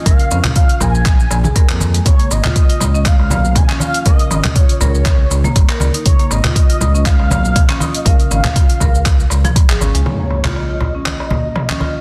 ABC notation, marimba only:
X:1
M:4/4
L:1/16
Q:"Swing 16ths" 1/4=120
K:Dbmix
V:1 name="Marimba"
B z D z F z B z4 A B B, z A, | z B, z F z F z D z2 B, z F, D F z | B z D z F z B z4 B, z B z E | z B, z F z F z D z2 B, z F, D F z |
B z D z F z B z4 F, z A D A, | z B, z F z F z D z2 B, z F, D F z |]